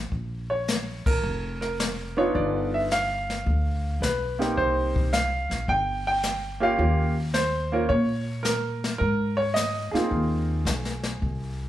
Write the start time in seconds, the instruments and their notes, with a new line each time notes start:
0.12 upright bass A#1, brush sweep, kick
0.50 grand piano C#5
0.68 snare, hi-hat pedal
1.06 upright bass A1, grand piano A#4, kick, ride
1.23 upright bass F1, brush sweep
1.61 grand piano A#4, snare
1.79 snare, hi-hat pedal
2.17 grand piano B3 D4 D#4 F4 C#5
2.35 upright bass G1, grand piano D5, brush sweep, kick
2.74 grand piano E5
2.91 grand piano F5, snare, hi-hat pedal
3.30 snare
3.46 upright bass D2, brush sweep, kick
4.00 upright bass B1, grand piano B4, snare, hi-hat pedal
4.39 grand piano A#3 C4 D#4 G4, snare
4.57 upright bass C2, grand piano C5, brush sweep, kick
4.96 kick
5.13 grand piano F5, snare, hi-hat pedal
5.50 upright bass A#1, snare
5.68 upright bass G1, grand piano G5, brush sweep, kick
6.07 grand piano G5
6.23 snare, hi-hat pedal
6.60 grand piano A#3 C#4 F4 G4 F5
6.78 upright bass D#2, grand piano A#3 C#4 F4 G4, brush sweep, kick
7.34 grand piano C5, snare, hi-hat pedal
7.72 grand piano A#3 C#4 F4 A#4
7.89 upright bass A#2, grand piano C#5, brush sweep, kick
8.43 grand piano A#4, snare, hi-hat pedal
8.84 snare
8.98 upright bass G#2, grand piano A#4, brush sweep, kick
9.37 grand piano C#5
9.54 grand piano D#5, snare, hi-hat pedal
9.91 grand piano A#3 C4 D#4 F4 G#4, muted upright bass stroke, snare
10.11 upright bass D#2, brush sweep, kick
10.65 upright bass B1, snare, hi-hat pedal
10.85 snare
11.03 snare
11.22 upright bass C2, brush sweep, kick